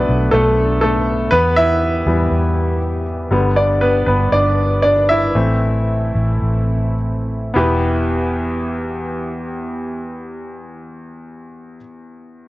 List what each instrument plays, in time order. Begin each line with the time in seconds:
Already playing: grand piano D3 F#3 A3 B3 D4 B4 D5, analog synth pad A3 B3 D4
0.09 fingered electric bass B1
0.31 fingered electric bass B1, grand piano A3 A4
0.81 grand piano A3 A4
1.31 fingered electric bass E2, analog synth pad E3 G4, grand piano B3 B4
1.56 grand piano E4 E5
2.06 fingered electric bass E2, grand piano E3 G3 B3
2.31 fingered electric bass E2
3.31 fingered electric bass G1, grand piano D3 G3 B3, analog synth pad G3 D4 B4
3.56 grand piano D4 D5
3.81 grand piano B3 B4
4.06 fingered electric bass G1, grand piano B3 B4
4.32 fingered electric bass G1, grand piano D4 D5
4.82 grand piano D4 D5
5.09 grand piano E4 E5
5.34 fingered electric bass A1, grand piano E3 A3 C4, analog synth pad A3 C4 E4
6.15 fingered electric bass A1
6.42 fingered electric bass A1
7.54 fingered electric bass E1, grand piano E2 B3 E4 G4, analog synth pad E3 B3 G4
7.58 grand piano B4